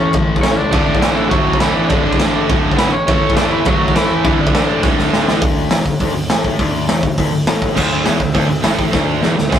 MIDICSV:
0, 0, Header, 1, 6, 480
1, 0, Start_track
1, 0, Key_signature, 2, "major"
1, 0, Tempo, 293399
1, 1181, Time_signature, 4, 2, 24, 8
1, 15691, End_track
2, 0, Start_track
2, 0, Title_t, "Overdriven electric guitar"
2, 0, Program_c, 0, 29
2, 0, Note_on_c, 0, 61, 78
2, 0, Note_on_c, 0, 73, 60
2, 185, Note_off_c, 0, 61, 0
2, 190, Note_off_c, 0, 73, 0
2, 698, Note_on_c, 0, 73, 65
2, 719, Note_on_c, 0, 61, 79
2, 923, Note_off_c, 0, 73, 0
2, 945, Note_on_c, 0, 74, 72
2, 960, Note_off_c, 0, 61, 0
2, 960, Note_on_c, 0, 62, 88
2, 1837, Note_off_c, 0, 74, 0
2, 1886, Note_off_c, 0, 62, 0
2, 1893, Note_on_c, 0, 64, 115
2, 1900, Note_on_c, 0, 52, 87
2, 2104, Note_off_c, 0, 64, 0
2, 2104, Note_on_c, 0, 66, 110
2, 2114, Note_off_c, 0, 52, 0
2, 2120, Note_on_c, 0, 54, 98
2, 2575, Note_off_c, 0, 54, 0
2, 2617, Note_off_c, 0, 66, 0
2, 2623, Note_on_c, 0, 52, 82
2, 2626, Note_on_c, 0, 64, 89
2, 3068, Note_off_c, 0, 52, 0
2, 3081, Note_off_c, 0, 64, 0
2, 3088, Note_on_c, 0, 62, 80
2, 3093, Note_on_c, 0, 74, 52
2, 3308, Note_off_c, 0, 62, 0
2, 3314, Note_off_c, 0, 74, 0
2, 3328, Note_on_c, 0, 62, 80
2, 3337, Note_on_c, 0, 74, 56
2, 4002, Note_off_c, 0, 62, 0
2, 4007, Note_off_c, 0, 74, 0
2, 4534, Note_on_c, 0, 59, 96
2, 4547, Note_on_c, 0, 71, 68
2, 4762, Note_off_c, 0, 71, 0
2, 4778, Note_on_c, 0, 61, 103
2, 4784, Note_off_c, 0, 59, 0
2, 4788, Note_on_c, 0, 73, 68
2, 5452, Note_off_c, 0, 73, 0
2, 5491, Note_off_c, 0, 61, 0
2, 5497, Note_on_c, 0, 62, 111
2, 5510, Note_on_c, 0, 74, 70
2, 5724, Note_off_c, 0, 74, 0
2, 5730, Note_off_c, 0, 62, 0
2, 5736, Note_on_c, 0, 64, 120
2, 5745, Note_on_c, 0, 52, 85
2, 5964, Note_off_c, 0, 52, 0
2, 5996, Note_on_c, 0, 54, 85
2, 6005, Note_off_c, 0, 64, 0
2, 6005, Note_on_c, 0, 66, 97
2, 6433, Note_off_c, 0, 54, 0
2, 6471, Note_on_c, 0, 52, 84
2, 6476, Note_off_c, 0, 66, 0
2, 6483, Note_on_c, 0, 64, 86
2, 6910, Note_off_c, 0, 52, 0
2, 6960, Note_off_c, 0, 64, 0
2, 6975, Note_on_c, 0, 52, 67
2, 6984, Note_on_c, 0, 64, 73
2, 7181, Note_off_c, 0, 52, 0
2, 7204, Note_off_c, 0, 64, 0
2, 7204, Note_on_c, 0, 62, 66
2, 7211, Note_on_c, 0, 74, 57
2, 7861, Note_off_c, 0, 74, 0
2, 7912, Note_off_c, 0, 62, 0
2, 15691, End_track
3, 0, Start_track
3, 0, Title_t, "Distorted electric guitar"
3, 0, Program_c, 1, 30
3, 0, Note_on_c, 1, 45, 71
3, 0, Note_on_c, 1, 52, 75
3, 0, Note_on_c, 1, 57, 80
3, 224, Note_off_c, 1, 45, 0
3, 226, Note_off_c, 1, 52, 0
3, 244, Note_on_c, 1, 45, 75
3, 245, Note_off_c, 1, 57, 0
3, 246, Note_on_c, 1, 52, 81
3, 251, Note_on_c, 1, 57, 92
3, 733, Note_off_c, 1, 52, 0
3, 737, Note_off_c, 1, 45, 0
3, 738, Note_off_c, 1, 57, 0
3, 744, Note_on_c, 1, 57, 85
3, 752, Note_on_c, 1, 52, 85
3, 757, Note_on_c, 1, 45, 77
3, 1169, Note_off_c, 1, 45, 0
3, 1175, Note_on_c, 1, 38, 104
3, 1187, Note_off_c, 1, 52, 0
3, 1189, Note_off_c, 1, 57, 0
3, 1193, Note_on_c, 1, 45, 105
3, 1195, Note_on_c, 1, 50, 110
3, 1650, Note_off_c, 1, 50, 0
3, 1660, Note_off_c, 1, 45, 0
3, 1663, Note_off_c, 1, 38, 0
3, 1670, Note_on_c, 1, 50, 87
3, 1680, Note_on_c, 1, 45, 76
3, 1682, Note_on_c, 1, 38, 67
3, 2137, Note_off_c, 1, 38, 0
3, 2138, Note_off_c, 1, 45, 0
3, 2151, Note_off_c, 1, 50, 0
3, 2157, Note_on_c, 1, 38, 91
3, 2158, Note_on_c, 1, 45, 82
3, 2171, Note_on_c, 1, 50, 99
3, 2608, Note_off_c, 1, 50, 0
3, 2612, Note_off_c, 1, 45, 0
3, 2627, Note_off_c, 1, 38, 0
3, 2627, Note_on_c, 1, 50, 97
3, 2632, Note_on_c, 1, 45, 85
3, 2646, Note_on_c, 1, 38, 74
3, 3117, Note_off_c, 1, 38, 0
3, 3119, Note_off_c, 1, 45, 0
3, 3127, Note_off_c, 1, 50, 0
3, 3136, Note_on_c, 1, 38, 83
3, 3138, Note_on_c, 1, 45, 109
3, 3154, Note_on_c, 1, 50, 104
3, 3588, Note_off_c, 1, 50, 0
3, 3597, Note_off_c, 1, 38, 0
3, 3606, Note_off_c, 1, 45, 0
3, 3607, Note_on_c, 1, 50, 96
3, 3617, Note_on_c, 1, 38, 72
3, 3625, Note_on_c, 1, 45, 75
3, 4090, Note_off_c, 1, 45, 0
3, 4091, Note_off_c, 1, 38, 0
3, 4096, Note_off_c, 1, 50, 0
3, 4109, Note_on_c, 1, 45, 90
3, 4110, Note_on_c, 1, 38, 90
3, 4128, Note_on_c, 1, 50, 105
3, 4561, Note_off_c, 1, 50, 0
3, 4563, Note_off_c, 1, 45, 0
3, 4568, Note_off_c, 1, 38, 0
3, 4581, Note_on_c, 1, 50, 90
3, 4582, Note_on_c, 1, 45, 97
3, 4587, Note_on_c, 1, 38, 81
3, 4784, Note_off_c, 1, 50, 0
3, 4785, Note_off_c, 1, 45, 0
3, 4787, Note_off_c, 1, 38, 0
3, 5046, Note_on_c, 1, 45, 104
3, 5056, Note_on_c, 1, 52, 114
3, 5057, Note_on_c, 1, 57, 110
3, 5512, Note_off_c, 1, 52, 0
3, 5515, Note_off_c, 1, 45, 0
3, 5523, Note_off_c, 1, 57, 0
3, 5530, Note_on_c, 1, 57, 95
3, 5531, Note_on_c, 1, 52, 81
3, 5534, Note_on_c, 1, 45, 76
3, 5999, Note_off_c, 1, 52, 0
3, 6002, Note_off_c, 1, 45, 0
3, 6019, Note_on_c, 1, 52, 84
3, 6021, Note_on_c, 1, 45, 85
3, 6023, Note_off_c, 1, 57, 0
3, 6029, Note_on_c, 1, 57, 91
3, 6494, Note_off_c, 1, 52, 0
3, 6497, Note_off_c, 1, 57, 0
3, 6502, Note_off_c, 1, 45, 0
3, 6504, Note_on_c, 1, 57, 92
3, 6514, Note_on_c, 1, 52, 83
3, 6521, Note_on_c, 1, 45, 80
3, 6944, Note_off_c, 1, 45, 0
3, 6950, Note_off_c, 1, 52, 0
3, 6958, Note_on_c, 1, 38, 90
3, 6964, Note_on_c, 1, 45, 97
3, 6970, Note_off_c, 1, 57, 0
3, 6977, Note_on_c, 1, 50, 110
3, 7413, Note_off_c, 1, 50, 0
3, 7432, Note_on_c, 1, 50, 84
3, 7436, Note_off_c, 1, 45, 0
3, 7442, Note_off_c, 1, 38, 0
3, 7456, Note_on_c, 1, 45, 77
3, 7461, Note_on_c, 1, 38, 68
3, 7884, Note_off_c, 1, 38, 0
3, 7889, Note_off_c, 1, 45, 0
3, 7900, Note_off_c, 1, 50, 0
3, 7904, Note_on_c, 1, 38, 84
3, 7908, Note_on_c, 1, 45, 89
3, 7920, Note_on_c, 1, 50, 104
3, 8362, Note_off_c, 1, 50, 0
3, 8364, Note_off_c, 1, 45, 0
3, 8376, Note_off_c, 1, 38, 0
3, 8381, Note_on_c, 1, 50, 91
3, 8384, Note_on_c, 1, 45, 76
3, 8396, Note_on_c, 1, 38, 84
3, 8837, Note_off_c, 1, 38, 0
3, 8844, Note_off_c, 1, 50, 0
3, 8845, Note_off_c, 1, 45, 0
3, 8857, Note_on_c, 1, 38, 104
3, 9327, Note_off_c, 1, 38, 0
3, 9333, Note_on_c, 1, 40, 107
3, 9568, Note_off_c, 1, 40, 0
3, 9575, Note_on_c, 1, 38, 80
3, 9768, Note_off_c, 1, 38, 0
3, 9836, Note_on_c, 1, 38, 101
3, 10053, Note_off_c, 1, 38, 0
3, 10073, Note_on_c, 1, 38, 79
3, 10257, Note_off_c, 1, 38, 0
3, 10334, Note_on_c, 1, 45, 111
3, 10776, Note_off_c, 1, 45, 0
3, 10783, Note_on_c, 1, 38, 118
3, 11244, Note_off_c, 1, 38, 0
3, 11251, Note_on_c, 1, 40, 100
3, 11487, Note_off_c, 1, 40, 0
3, 11506, Note_on_c, 1, 38, 78
3, 11694, Note_off_c, 1, 38, 0
3, 11746, Note_on_c, 1, 38, 104
3, 11975, Note_off_c, 1, 38, 0
3, 12025, Note_on_c, 1, 38, 84
3, 12194, Note_off_c, 1, 38, 0
3, 12244, Note_on_c, 1, 45, 100
3, 12702, Note_off_c, 1, 45, 0
3, 12709, Note_on_c, 1, 38, 106
3, 13177, Note_off_c, 1, 38, 0
3, 13192, Note_on_c, 1, 40, 91
3, 13419, Note_off_c, 1, 40, 0
3, 13437, Note_on_c, 1, 38, 80
3, 13620, Note_off_c, 1, 38, 0
3, 13664, Note_on_c, 1, 38, 106
3, 13895, Note_off_c, 1, 38, 0
3, 13929, Note_on_c, 1, 38, 77
3, 14107, Note_off_c, 1, 38, 0
3, 14186, Note_on_c, 1, 45, 104
3, 14627, Note_off_c, 1, 45, 0
3, 14633, Note_on_c, 1, 38, 122
3, 15100, Note_off_c, 1, 38, 0
3, 15107, Note_on_c, 1, 40, 95
3, 15333, Note_off_c, 1, 40, 0
3, 15339, Note_on_c, 1, 38, 69
3, 15532, Note_off_c, 1, 38, 0
3, 15582, Note_on_c, 1, 38, 102
3, 15691, Note_off_c, 1, 38, 0
3, 15691, End_track
4, 0, Start_track
4, 0, Title_t, "Distorted electric guitar"
4, 0, Program_c, 2, 30
4, 14109, Note_on_c, 2, 45, 104
4, 14574, Note_off_c, 2, 45, 0
4, 15691, End_track
5, 0, Start_track
5, 0, Title_t, "Picked electric bass"
5, 0, Program_c, 3, 34
5, 0, Note_on_c, 3, 40, 101
5, 178, Note_off_c, 3, 40, 0
5, 230, Note_on_c, 3, 33, 84
5, 659, Note_off_c, 3, 33, 0
5, 708, Note_on_c, 3, 33, 95
5, 921, Note_off_c, 3, 33, 0
5, 963, Note_on_c, 3, 37, 88
5, 1169, Note_off_c, 3, 37, 0
5, 1194, Note_on_c, 3, 26, 99
5, 1404, Note_off_c, 3, 26, 0
5, 1428, Note_on_c, 3, 26, 94
5, 1641, Note_off_c, 3, 26, 0
5, 1667, Note_on_c, 3, 33, 99
5, 2096, Note_off_c, 3, 33, 0
5, 2147, Note_on_c, 3, 26, 92
5, 2576, Note_off_c, 3, 26, 0
5, 2634, Note_on_c, 3, 26, 108
5, 2843, Note_off_c, 3, 26, 0
5, 2873, Note_on_c, 3, 33, 86
5, 3083, Note_off_c, 3, 33, 0
5, 3112, Note_on_c, 3, 26, 106
5, 3322, Note_off_c, 3, 26, 0
5, 3355, Note_on_c, 3, 26, 82
5, 3564, Note_off_c, 3, 26, 0
5, 3602, Note_on_c, 3, 33, 101
5, 4023, Note_off_c, 3, 33, 0
5, 4085, Note_on_c, 3, 26, 91
5, 4505, Note_off_c, 3, 26, 0
5, 4556, Note_on_c, 3, 31, 98
5, 4763, Note_off_c, 3, 31, 0
5, 4806, Note_on_c, 3, 33, 87
5, 5009, Note_off_c, 3, 33, 0
5, 5040, Note_on_c, 3, 33, 107
5, 5245, Note_off_c, 3, 33, 0
5, 5292, Note_on_c, 3, 33, 88
5, 5492, Note_off_c, 3, 33, 0
5, 5528, Note_on_c, 3, 40, 104
5, 5946, Note_off_c, 3, 40, 0
5, 5995, Note_on_c, 3, 33, 90
5, 6418, Note_off_c, 3, 33, 0
5, 6460, Note_on_c, 3, 33, 94
5, 6674, Note_off_c, 3, 33, 0
5, 6695, Note_on_c, 3, 40, 88
5, 6911, Note_off_c, 3, 40, 0
5, 6951, Note_on_c, 3, 26, 109
5, 7160, Note_off_c, 3, 26, 0
5, 7182, Note_on_c, 3, 26, 79
5, 7395, Note_off_c, 3, 26, 0
5, 7412, Note_on_c, 3, 33, 89
5, 7846, Note_off_c, 3, 33, 0
5, 7908, Note_on_c, 3, 26, 90
5, 8335, Note_off_c, 3, 26, 0
5, 8392, Note_on_c, 3, 26, 95
5, 8601, Note_off_c, 3, 26, 0
5, 8632, Note_on_c, 3, 33, 89
5, 8841, Note_off_c, 3, 33, 0
5, 8864, Note_on_c, 3, 26, 96
5, 9307, Note_off_c, 3, 26, 0
5, 9346, Note_on_c, 3, 28, 100
5, 9565, Note_off_c, 3, 28, 0
5, 9577, Note_on_c, 3, 26, 79
5, 9800, Note_off_c, 3, 26, 0
5, 9822, Note_on_c, 3, 26, 94
5, 10038, Note_off_c, 3, 26, 0
5, 10048, Note_on_c, 3, 26, 84
5, 10276, Note_off_c, 3, 26, 0
5, 10305, Note_on_c, 3, 33, 107
5, 10748, Note_off_c, 3, 33, 0
5, 10788, Note_on_c, 3, 26, 105
5, 11230, Note_off_c, 3, 26, 0
5, 11254, Note_on_c, 3, 28, 99
5, 11479, Note_off_c, 3, 28, 0
5, 11501, Note_on_c, 3, 26, 88
5, 11723, Note_off_c, 3, 26, 0
5, 11743, Note_on_c, 3, 26, 94
5, 11964, Note_off_c, 3, 26, 0
5, 11994, Note_on_c, 3, 26, 74
5, 12207, Note_off_c, 3, 26, 0
5, 12216, Note_on_c, 3, 33, 102
5, 12664, Note_off_c, 3, 33, 0
5, 12712, Note_on_c, 3, 26, 91
5, 13153, Note_off_c, 3, 26, 0
5, 13183, Note_on_c, 3, 28, 97
5, 13405, Note_off_c, 3, 28, 0
5, 13423, Note_on_c, 3, 26, 93
5, 13645, Note_off_c, 3, 26, 0
5, 13653, Note_on_c, 3, 26, 90
5, 13879, Note_off_c, 3, 26, 0
5, 13902, Note_on_c, 3, 26, 80
5, 14124, Note_off_c, 3, 26, 0
5, 14148, Note_on_c, 3, 33, 97
5, 14591, Note_off_c, 3, 33, 0
5, 14617, Note_on_c, 3, 26, 103
5, 15065, Note_off_c, 3, 26, 0
5, 15099, Note_on_c, 3, 28, 95
5, 15323, Note_off_c, 3, 28, 0
5, 15335, Note_on_c, 3, 26, 85
5, 15561, Note_off_c, 3, 26, 0
5, 15583, Note_on_c, 3, 26, 89
5, 15691, Note_off_c, 3, 26, 0
5, 15691, End_track
6, 0, Start_track
6, 0, Title_t, "Drums"
6, 212, Note_on_c, 9, 49, 69
6, 228, Note_on_c, 9, 36, 121
6, 375, Note_off_c, 9, 49, 0
6, 392, Note_off_c, 9, 36, 0
6, 591, Note_on_c, 9, 36, 86
6, 708, Note_on_c, 9, 49, 74
6, 711, Note_on_c, 9, 38, 125
6, 754, Note_off_c, 9, 36, 0
6, 872, Note_off_c, 9, 49, 0
6, 875, Note_off_c, 9, 38, 0
6, 1184, Note_on_c, 9, 49, 81
6, 1190, Note_on_c, 9, 36, 124
6, 1348, Note_off_c, 9, 49, 0
6, 1354, Note_off_c, 9, 36, 0
6, 1548, Note_on_c, 9, 36, 89
6, 1672, Note_on_c, 9, 49, 71
6, 1675, Note_on_c, 9, 38, 126
6, 1712, Note_off_c, 9, 36, 0
6, 1835, Note_off_c, 9, 49, 0
6, 1839, Note_off_c, 9, 38, 0
6, 2149, Note_on_c, 9, 36, 117
6, 2152, Note_on_c, 9, 49, 63
6, 2313, Note_off_c, 9, 36, 0
6, 2316, Note_off_c, 9, 49, 0
6, 2511, Note_on_c, 9, 36, 81
6, 2620, Note_on_c, 9, 49, 75
6, 2623, Note_on_c, 9, 38, 119
6, 2675, Note_off_c, 9, 36, 0
6, 2783, Note_off_c, 9, 49, 0
6, 2787, Note_off_c, 9, 38, 0
6, 3101, Note_on_c, 9, 49, 73
6, 3113, Note_on_c, 9, 36, 116
6, 3265, Note_off_c, 9, 49, 0
6, 3277, Note_off_c, 9, 36, 0
6, 3478, Note_on_c, 9, 36, 83
6, 3589, Note_on_c, 9, 49, 65
6, 3592, Note_on_c, 9, 38, 127
6, 3642, Note_off_c, 9, 36, 0
6, 3753, Note_off_c, 9, 49, 0
6, 3756, Note_off_c, 9, 38, 0
6, 4082, Note_on_c, 9, 49, 61
6, 4083, Note_on_c, 9, 36, 116
6, 4246, Note_off_c, 9, 49, 0
6, 4247, Note_off_c, 9, 36, 0
6, 4442, Note_on_c, 9, 36, 76
6, 4554, Note_on_c, 9, 49, 66
6, 4558, Note_on_c, 9, 38, 127
6, 4606, Note_off_c, 9, 36, 0
6, 4718, Note_off_c, 9, 49, 0
6, 4721, Note_off_c, 9, 38, 0
6, 5039, Note_on_c, 9, 49, 80
6, 5040, Note_on_c, 9, 36, 127
6, 5202, Note_off_c, 9, 49, 0
6, 5204, Note_off_c, 9, 36, 0
6, 5395, Note_on_c, 9, 36, 89
6, 5504, Note_on_c, 9, 49, 68
6, 5508, Note_on_c, 9, 38, 122
6, 5558, Note_off_c, 9, 36, 0
6, 5668, Note_off_c, 9, 49, 0
6, 5671, Note_off_c, 9, 38, 0
6, 5973, Note_on_c, 9, 49, 68
6, 5990, Note_on_c, 9, 36, 121
6, 6136, Note_off_c, 9, 49, 0
6, 6153, Note_off_c, 9, 36, 0
6, 6349, Note_on_c, 9, 36, 81
6, 6472, Note_on_c, 9, 49, 67
6, 6475, Note_on_c, 9, 38, 127
6, 6512, Note_off_c, 9, 36, 0
6, 6635, Note_off_c, 9, 49, 0
6, 6638, Note_off_c, 9, 38, 0
6, 6945, Note_on_c, 9, 49, 67
6, 6947, Note_on_c, 9, 36, 127
6, 7109, Note_off_c, 9, 49, 0
6, 7111, Note_off_c, 9, 36, 0
6, 7308, Note_on_c, 9, 36, 101
6, 7436, Note_on_c, 9, 49, 63
6, 7439, Note_on_c, 9, 38, 121
6, 7472, Note_off_c, 9, 36, 0
6, 7600, Note_off_c, 9, 49, 0
6, 7603, Note_off_c, 9, 38, 0
6, 7906, Note_on_c, 9, 36, 127
6, 7906, Note_on_c, 9, 38, 77
6, 8069, Note_off_c, 9, 38, 0
6, 8070, Note_off_c, 9, 36, 0
6, 8159, Note_on_c, 9, 38, 74
6, 8322, Note_off_c, 9, 38, 0
6, 8400, Note_on_c, 9, 38, 109
6, 8564, Note_off_c, 9, 38, 0
6, 8642, Note_on_c, 9, 38, 109
6, 8806, Note_off_c, 9, 38, 0
6, 8861, Note_on_c, 9, 46, 78
6, 8865, Note_on_c, 9, 36, 126
6, 9025, Note_off_c, 9, 46, 0
6, 9028, Note_off_c, 9, 36, 0
6, 9335, Note_on_c, 9, 46, 69
6, 9338, Note_on_c, 9, 38, 124
6, 9499, Note_off_c, 9, 46, 0
6, 9502, Note_off_c, 9, 38, 0
6, 9580, Note_on_c, 9, 36, 82
6, 9744, Note_off_c, 9, 36, 0
6, 9812, Note_on_c, 9, 46, 73
6, 9821, Note_on_c, 9, 36, 98
6, 9975, Note_off_c, 9, 46, 0
6, 9985, Note_off_c, 9, 36, 0
6, 10300, Note_on_c, 9, 46, 71
6, 10303, Note_on_c, 9, 38, 127
6, 10464, Note_off_c, 9, 46, 0
6, 10467, Note_off_c, 9, 38, 0
6, 10545, Note_on_c, 9, 36, 88
6, 10709, Note_off_c, 9, 36, 0
6, 10785, Note_on_c, 9, 36, 107
6, 10790, Note_on_c, 9, 46, 72
6, 10948, Note_off_c, 9, 36, 0
6, 10953, Note_off_c, 9, 46, 0
6, 11267, Note_on_c, 9, 46, 63
6, 11271, Note_on_c, 9, 38, 119
6, 11431, Note_off_c, 9, 46, 0
6, 11434, Note_off_c, 9, 38, 0
6, 11502, Note_on_c, 9, 36, 95
6, 11665, Note_off_c, 9, 36, 0
6, 11745, Note_on_c, 9, 36, 101
6, 11753, Note_on_c, 9, 46, 65
6, 11908, Note_off_c, 9, 36, 0
6, 11917, Note_off_c, 9, 46, 0
6, 12221, Note_on_c, 9, 46, 67
6, 12224, Note_on_c, 9, 38, 127
6, 12385, Note_off_c, 9, 46, 0
6, 12388, Note_off_c, 9, 38, 0
6, 12466, Note_on_c, 9, 36, 90
6, 12629, Note_off_c, 9, 36, 0
6, 12709, Note_on_c, 9, 36, 99
6, 12714, Note_on_c, 9, 57, 117
6, 12872, Note_off_c, 9, 36, 0
6, 12878, Note_off_c, 9, 57, 0
6, 13177, Note_on_c, 9, 46, 66
6, 13181, Note_on_c, 9, 38, 124
6, 13341, Note_off_c, 9, 46, 0
6, 13344, Note_off_c, 9, 38, 0
6, 13418, Note_on_c, 9, 36, 84
6, 13581, Note_off_c, 9, 36, 0
6, 13653, Note_on_c, 9, 46, 72
6, 13656, Note_on_c, 9, 36, 98
6, 13817, Note_off_c, 9, 46, 0
6, 13820, Note_off_c, 9, 36, 0
6, 14129, Note_on_c, 9, 46, 74
6, 14132, Note_on_c, 9, 38, 119
6, 14293, Note_off_c, 9, 46, 0
6, 14296, Note_off_c, 9, 38, 0
6, 14374, Note_on_c, 9, 36, 91
6, 14537, Note_off_c, 9, 36, 0
6, 14614, Note_on_c, 9, 36, 105
6, 14620, Note_on_c, 9, 38, 74
6, 14777, Note_off_c, 9, 36, 0
6, 14784, Note_off_c, 9, 38, 0
6, 15098, Note_on_c, 9, 38, 90
6, 15261, Note_off_c, 9, 38, 0
6, 15354, Note_on_c, 9, 38, 73
6, 15518, Note_off_c, 9, 38, 0
6, 15582, Note_on_c, 9, 36, 108
6, 15586, Note_on_c, 9, 38, 98
6, 15691, Note_off_c, 9, 36, 0
6, 15691, Note_off_c, 9, 38, 0
6, 15691, End_track
0, 0, End_of_file